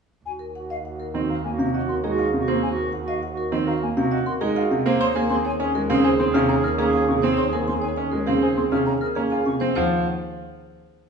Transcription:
0.25 4.85 D#2 medium
0.25 0.47 F#4 soft
0.25 0.32 G#5 medium
0.39 0.59 A#4 soft
0.55 0.77 F#4 soft
0.55 0.75 F#5 medium
0.70 0.89 D#5 medium
0.70 0.76 F5 medium
0.85 1.08 F#4 soft
0.85 1.04 F#5 medium
1.00 1.19 A#4 medium
1.14 1.34 D#3 medium
1.14 1.34 C4 medium
1.14 1.39 F#4 medium
1.14 1.21 D#5 medium
1.29 1.49 A#4 soft
1.29 1.35 F5 soft
1.44 1.64 A#3 medium
1.44 1.51 G#5 medium
1.49 1.70 F#4 medium
1.58 1.78 C3 medium
1.58 1.79 F5 medium
1.74 1.93 F#4 medium
1.74 1.93 D#5 medium
1.78 2.00 F#4 medium
1.89 2.08 A#4 medium
1.89 1.95 C6 medium
2.04 2.23 G#3 medium
2.04 2.23 D#4 medium
2.04 2.23 G#4 medium
2.09 2.31 F#4 medium
2.18 2.38 F4 medium
2.18 2.38 F#5 medium
2.33 2.53 C3 medium
2.33 2.53 F5 medium
2.40 2.61 F#4 medium
2.48 2.68 A#3 medium
2.48 2.68 C4 medium
2.48 2.67 C5 medium
2.63 2.69 G#5 medium
2.70 2.92 F#4 medium
2.77 2.97 A#4 medium
2.92 3.12 F#5 medium
3.02 3.23 F#4 medium
3.08 3.27 D#5 medium
3.08 3.14 F5 medium
3.23 3.42 F#5 medium
3.32 3.54 F#4 medium
3.37 3.57 A#4 medium
3.52 3.72 D#3 medium
3.52 3.71 C4 medium
3.52 3.58 D#5 medium
3.63 3.85 F#4 medium
3.63 3.86 A#4 medium
3.67 3.73 F5 medium
3.82 4.01 A#3 medium
3.82 3.89 G#5 medium
3.95 4.16 C3 medium
3.95 4.16 F#4 medium
3.95 4.16 F5 medium
4.11 4.31 F#4 medium
4.11 4.31 D#5 medium
4.24 4.46 F#4 medium
4.24 4.46 A#4 medium
4.24 4.32 C6 medium
4.41 4.61 G#3 medium
4.41 4.61 D#4 medium
4.41 4.60 G#4 medium
4.55 4.75 F4 medium
4.55 4.77 F#4 soft
4.55 4.75 F#5 medium
4.71 4.90 C3 medium
4.71 4.90 F5 medium
4.86 5.05 A#3 loud
4.86 5.05 C4 medium
4.86 5.05 C5 medium
5.00 9.60 D#2 medium
5.00 5.22 G#4 soft
5.00 5.20 C5 medium
5.00 5.20 C#5 medium
5.00 5.06 C6 medium
5.15 5.35 A#3 medium
5.15 5.35 G#4 medium
5.15 5.35 A#4 medium
5.30 5.50 C4 medium
5.30 5.53 G#4 medium
5.30 5.50 G#5 medium
5.30 5.36 C6 medium
5.45 5.64 C#5 medium
5.45 5.51 G#5 medium
5.60 5.79 C#4 medium
5.60 5.84 G#4 medium
5.60 5.79 G#5 medium
5.75 5.94 G#3 medium
5.75 5.94 A#4 medium
5.89 6.09 C#3 medium
5.89 6.09 C4 loud
5.89 6.09 G#4 medium
5.89 6.14 G#4 medium
5.89 5.95 F5 medium
6.04 6.24 C5 medium
6.04 6.10 G#5 medium
6.19 6.39 C4 medium
6.19 6.39 G#4 medium
6.19 6.25 C6 medium
6.24 6.45 G#4 medium
6.34 6.54 C3 loud
6.34 6.54 C#4 medium
6.34 6.54 F5 medium
6.34 6.40 F6 medium
6.49 6.68 G#4 medium
6.49 6.69 C#5 medium
6.49 6.55 A#5 medium
6.54 6.76 G#4 medium
6.63 6.83 A#4 medium
6.63 6.69 F6 medium
6.78 6.98 A#3 medium
6.78 6.98 C#4 medium
6.78 6.98 G#4 medium
6.78 6.85 A#5 medium
6.85 7.06 G#4 medium
6.93 7.13 F4 medium
6.93 7.13 G#5 medium
7.08 7.28 C3 medium
7.08 7.28 F5 medium
7.08 7.14 C#6 medium
7.16 7.38 G#4 medium
7.22 7.43 C4 medium
7.22 7.42 C5 medium
7.37 7.58 C5 medium
7.37 7.57 C#5 medium
7.37 7.44 C6 medium
7.47 7.68 G#4 medium
7.53 7.73 A#3 medium
7.53 7.72 G#4 medium
7.53 7.72 A#4 medium
7.67 7.88 C4 medium
7.67 7.87 G#5 medium
7.67 7.73 C6 medium
7.78 7.99 G#4 medium
7.78 8.02 C#5 medium
7.78 7.87 G#5 medium
7.96 8.17 C#4 medium
7.96 8.17 G#5 medium
8.08 8.30 G#4 medium
8.08 8.32 A#4 medium
8.13 8.32 G#3 medium
8.27 8.47 C#3 medium
8.27 8.47 C4 medium
8.27 8.47 G#4 medium
8.27 8.33 F5 medium
8.39 8.61 G#4 medium
8.39 8.61 C5 medium
8.39 8.62 C5 medium
8.39 8.48 G#5 medium
8.57 8.77 C4 medium
8.57 8.76 G#4 medium
8.57 8.63 C6 medium
8.69 8.92 C3 medium
8.69 8.91 C#4 medium
8.69 8.90 G#4 medium
8.69 8.91 F5 medium
8.69 8.78 F6 medium
8.86 9.06 G#4 medium
8.86 9.06 C#5 medium
8.86 8.92 A#5 medium
9.00 9.21 G#4 soft
9.00 9.21 A#4 medium
9.00 9.07 F6 medium
9.15 9.36 A#3 medium
9.15 9.36 C#4 medium
9.15 9.35 G#4 medium
9.15 9.22 A#5 medium
9.30 9.51 F4 medium
9.30 9.52 G#4 soft
9.30 9.50 G#5 medium
9.45 9.66 C3 medium
9.45 9.65 F5 medium
9.45 9.52 C#6 medium
9.60 9.80 C4 medium
9.60 9.81 C4 medium
9.60 9.74 C5 medium
9.75 10.04 D#2 medium
9.75 10.04 F3 medium
9.75 10.04 F4 medium
9.75 10.03 C5 medium
9.75 10.03 F#5 medium

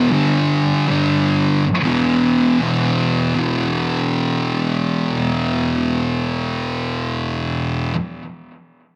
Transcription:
0.00 0.11 E3 medium
0.09 0.86 G2 medium
0.09 0.87 D3 loud
0.09 0.86 G3 loud
0.87 1.65 G2 medium
0.87 1.64 D3 medium
0.87 1.63 G3 loud
1.83 2.58 E2 medium
1.83 2.60 B2 medium
1.83 2.61 E3 loud
2.59 3.34 E2 medium
2.59 3.36 B2 medium
2.59 3.37 E3 loud
3.35 7.93 E2 loud
3.35 7.94 B2 loud
3.39 7.95 E3 loud

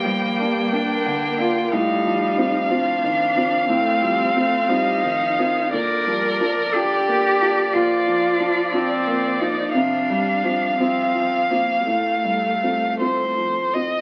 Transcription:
0.00 1.67 G2 medium
0.00 0.75 A#3 medium
0.00 1.74 G5 medium
0.05 0.40 F3 medium
0.05 0.58 G3 medium
0.38 0.73 G3 medium
0.38 0.69 A#3 soft
0.38 0.69 D4 soft
0.72 1.73 A#3 medium
0.72 1.02 A#3 soft
0.72 1.02 D4 medium
0.72 1.41 D4 medium
1.06 1.59 D3 medium
1.39 1.69 A#3 soft
1.39 1.69 D4 soft
1.39 1.74 F4 medium
1.72 3.65 A2 medium
1.72 2.72 G3 medium
1.72 2.73 D#4 medium
1.72 5.73 F5 medium
2.05 2.57 F3 medium
2.38 2.67 C4 soft
2.38 2.67 F4 soft
2.70 3.71 F3 medium
2.70 3.00 C4 soft
2.70 3.68 D4 medium
2.70 3.00 F4 medium
3.03 3.56 D#3 soft
3.37 3.66 C4 soft
3.37 3.66 F4 soft
3.69 5.69 A2 medium
3.69 4.03 A3 medium
3.69 4.71 C4 medium
4.01 4.55 F3 medium
4.01 4.34 G3 medium
4.35 4.70 A3 medium
4.35 4.65 C4 soft
4.35 4.66 F4 soft
4.68 5.04 G3 medium
4.68 5.00 C4 soft
4.68 5.72 D#4 medium
4.68 5.00 F4 soft
5.03 5.59 D#3 medium
5.03 5.40 F3 medium
5.38 5.74 D#3 medium
5.38 5.70 C4 soft
5.38 5.70 F4 medium
5.73 7.69 A#2 medium
5.73 6.08 D3 medium
5.73 6.76 A#4 loud
5.73 9.70 D5 medium
6.07 6.61 F3 medium
6.07 6.42 G3 medium
6.40 6.75 F3 medium
6.40 6.71 D4 soft
6.40 6.71 F4 soft
6.74 7.72 D3 medium
6.74 7.04 D4 soft
6.74 7.05 F4 soft
6.74 7.75 G4 loud
7.08 7.61 A#3 medium
7.41 7.70 D4 soft
7.41 7.70 F4 medium
7.73 9.70 A#2 medium
7.73 9.70 F3 medium
7.73 8.74 F4 medium
8.07 8.60 F3 medium
8.40 8.70 D4 soft
8.40 8.70 F4 soft
8.73 9.42 C4 medium
8.73 9.03 D4 medium
8.73 9.03 F4 medium
9.07 9.60 A#3 medium
9.40 9.76 D#4 medium
9.40 9.71 F4 medium
9.40 9.71 D5 soft
9.74 11.82 C3 medium
9.74 10.11 F3 medium
9.74 10.78 D4 medium
9.74 12.96 F5 medium
10.10 10.45 G3 medium
10.10 10.65 G3 soft
10.43 11.87 F3 medium
10.43 10.76 C4 soft
10.43 10.76 F4 soft
10.79 11.51 C4 medium
10.79 11.11 C4 soft
10.79 11.12 F4 soft
11.15 11.72 F3 soft
11.50 11.87 A#3 medium
11.50 11.83 C4 soft
11.50 11.83 F4 soft
11.86 14.01 A2 soft
11.86 13.73 A3 medium
11.86 13.55 A3 medium
12.24 12.85 G3 soft
12.63 12.96 C4 soft
12.63 12.97 F4 soft
13.00 13.33 C4 soft
13.00 13.33 F4 soft
13.00 13.75 C5 medium
13.37 13.95 F3 soft
13.74 14.01 C4 soft
13.74 14.01 F4 soft
13.74 14.01 D#5 medium

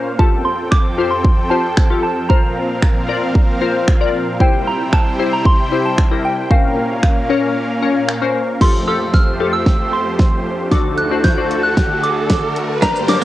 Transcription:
0.00 0.17 A#2 medium
0.00 0.17 A#3 medium
0.00 0.11 C#4 medium
0.00 0.17 C#4 medium
0.00 0.12 A#4 medium
0.00 0.12 C5 medium
0.00 0.17 C5 medium
0.00 0.17 F5 medium
0.19 2.28 F2 medium
0.19 4.36 F3 medium
0.19 2.28 C4 medium
0.19 0.82 F4 medium
0.19 0.83 G4 medium
0.19 2.28 A4 medium
0.19 0.83 A4 medium
0.19 2.28 G5 medium
0.19 0.46 A5 medium
0.19 kick loud
0.45 0.57 C6 medium
0.71 1.12 D6 loud
0.71 finger snap loud
0.71 kick loud
0.98 1.40 F4 medium
0.98 1.40 G4 medium
0.98 1.41 C5 medium
1.11 1.52 C6 medium
1.24 kick loud
1.50 1.82 F4 medium
1.50 1.83 G4 medium
1.50 1.83 C5 medium
1.50 2.02 A5 medium
1.77 finger snap loud
1.77 kick loud
1.90 2.22 F4 medium
1.90 2.22 G4 medium
1.90 2.22 A4 medium
2.03 2.28 A5 medium
2.29 4.38 A#2 medium
2.29 4.38 C4 medium
2.29 2.93 F4 medium
2.29 2.93 A#4 medium
2.29 4.38 A#4 medium
2.29 2.93 C5 medium
2.29 4.38 F5 medium
2.29 3.83 A#5 medium
2.29 kick loud
2.82 finger snap loud
2.82 kick loud
3.08 3.51 F4 medium
3.08 3.51 A#4 medium
3.08 3.51 D5 loud
3.35 kick loud
3.61 3.93 F4 medium
3.61 3.93 A#4 medium
3.61 3.93 C5 medium
3.88 finger snap loud
3.88 kick loud
4.01 4.32 F4 medium
4.01 4.32 A#4 medium
4.01 4.33 D5 loud
4.40 6.49 C3 medium
4.40 6.49 G3 medium
4.40 5.03 E4 medium
4.40 6.49 E4 medium
4.40 5.04 G4 medium
4.40 5.04 C5 medium
4.40 6.49 C5 medium
4.40 6.49 G5 medium
4.40 4.68 G5 medium
4.40 kick loud
4.67 4.94 A#5 medium
4.93 5.34 A5 medium
4.93 finger snap loud
4.93 kick loud
5.19 5.61 E4 medium
5.19 5.62 G4 medium
5.19 5.62 C5 medium
5.33 5.46 A#5 medium
5.45 5.86 C6 loud
5.45 kick loud
5.72 6.04 E4 medium
5.72 6.04 G4 medium
5.72 6.04 C5 medium
5.85 6.22 A5 medium
5.98 finger snap loud
5.98 kick loud
6.11 6.43 E4 medium
6.11 6.43 G4 medium
6.11 6.43 A#4 medium
6.25 6.52 G5 medium
6.51 8.59 A#2 medium
6.51 8.59 A#3 medium
6.51 7.14 C#4 medium
6.51 8.59 C#4 medium
6.51 7.14 A#4 medium
6.51 8.59 A#4 medium
6.51 7.14 C5 medium
6.51 8.59 F5 medium
6.51 7.52 F5 medium
6.51 kick loud
7.03 finger snap loud
7.03 kick loud
7.29 7.72 C#4 medium
7.29 7.72 A#4 medium
7.29 7.72 C#5 loud
7.82 8.14 C#4 medium
7.82 8.14 A#4 medium
7.82 8.14 C#5 medium
8.09 finger snap loud
8.22 8.53 C#4 medium
8.22 8.54 A#4 medium
8.22 8.54 C5 loud
8.61 10.70 F2 medium
8.61 10.70 F3 medium
8.61 10.70 A3 medium
8.61 8.82 F4 medium
8.61 10.70 G4 medium
8.61 8.82 G4 medium
8.61 8.83 A4 medium
8.61 10.70 C5 medium
8.61 8.89 C6 medium
8.61 kick loud
8.61 snare medium
8.61 crash medium
8.61 riser medium
8.88 9.30 F4 medium
8.88 9.30 G4 medium
8.88 9.30 A4 medium
8.88 9.15 E6 loud
9.14 9.55 F6 loud
9.14 kick loud
9.14 snare medium
9.40 10.25 F4 medium
9.40 10.25 G4 medium
9.40 10.25 A4 medium
9.53 9.94 E6 loud
9.66 kick loud
9.66 snare medium
9.93 10.42 C6 medium
10.19 kick loud
10.19 snare medium
10.71 12.80 D2 medium
10.71 13.24 D3 medium
10.71 12.80 A3 medium
10.71 11.03 D4 medium
10.71 11.03 F#4 medium
10.71 12.80 F#4 medium
10.71 12.80 A4 medium
10.71 11.04 A4 medium
10.71 10.99 D6 medium
10.71 kick loud
10.71 snare medium
10.71 closed hi-hat medium
10.98 11.25 F#6 loud
10.98 closed hi-hat medium
11.11 11.32 D4 medium
11.11 11.32 F#4 medium
11.11 11.32 C5 medium
11.24 11.65 G6 loud
11.24 kick loud
11.24 snare medium
11.24 closed hi-hat medium
11.37 12.22 D4 medium
11.37 12.22 F#4 medium
11.37 12.22 C5 medium
11.51 closed hi-hat medium
11.63 12.04 F#6 loud
11.77 kick loud
11.77 snare medium
11.77 closed hi-hat medium
12.03 12.52 D6 medium
12.03 closed hi-hat medium
12.30 kick loud
12.30 snare medium
12.30 closed hi-hat medium
12.56 closed hi-hat medium
12.82 13.24 G2 medium
12.82 13.24 A#3 medium
12.82 13.03 D4 medium
12.82 12.93 D4 medium
12.82 13.03 G4 medium
12.82 13.24 G4 medium
12.82 13.04 A#4 medium
12.82 13.24 D5 medium
12.82 13.10 A#5 medium
12.82 kick loud
12.82 snare medium
12.82 closed hi-hat medium
12.82 shaker medium
12.96 shaker soft
13.08 13.24 D4 medium
13.08 13.24 G4 medium
13.08 13.24 A#4 medium
13.08 13.24 D6 loud
13.08 muted clean electric guitar stroke soft
13.08 snare medium
13.08 open hi-hat medium
13.08 shaker medium

